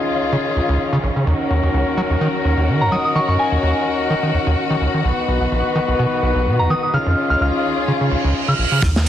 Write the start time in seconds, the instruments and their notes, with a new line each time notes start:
Already playing: string section D#3 C#4 F4, brass ensemble C#4 D#4 F4 G#4
0.32 acid bass C#3
0.56 acid bass C#2
0.69 acid bass C#2
0.93 acid bass C#3
1.03 acid bass A#1
1.16 acid bass C#3
1.27 acid bass D#2, brass ensemble C#4 D#4 F#4 A#4, string section F#4
1.50 acid bass D#2
1.63 acid bass D#2
1.74 acid bass C#2
1.97 acid bass F#3
2.10 acid bass D#2
2.21 acid bass D#3
2.45 acid bass D#2
2.57 acid bass D#2
2.68 acid bass D#3
2.81 acid bass F#2, synth bell A#5
2.92 acid bass F#3, synth bell D#6
3.05 synth bell D#6
3.15 acid bass D#3, synth bell C#6
3.28 acid bass F#2, synth bell C#6
3.39 synth bell G#5
3.52 acid bass D#2
3.63 acid bass D#2
4.10 acid bass D#3
4.23 acid bass D#3
4.34 acid bass D#2
4.47 acid bass D#2
4.70 acid bass D#3
4.81 acid bass C#2
4.94 acid bass D#3
5.05 acid bass B1, string section D#3 B3, brass ensemble B3 D#4 F#4 B4
5.28 acid bass B1
5.41 acid bass B1
5.52 acid bass A#1
5.75 acid bass D#3
5.88 acid bass B1
5.99 acid bass B2
6.23 acid bass B1
6.35 acid bass B1
6.46 acid bass B2
6.59 acid bass D#2, synth bell A#5
6.70 acid bass D#3, synth bell D#6
6.83 synth bell D#6
6.94 acid bass C#3, string section C#4 F4, brass ensemble C#4 D#4 F4 G#4, synth bell F6
7.06 acid bass F2
7.30 acid bass C#2, synth bell F6
7.41 acid bass C#2, synth bell F6
7.88 acid bass C#3, reverse cymbal
8.01 acid bass C#3
8.12 acid bass C#2
8.24 acid bass C#2
8.48 acid bass C#3, synth bell F6
8.59 acid bass A#1
8.72 acid bass C#3
8.82 fingered electric bass D#2, acid bass D#2, kick, closed hi-hat, downlifter, shaker
8.96 snare, shaker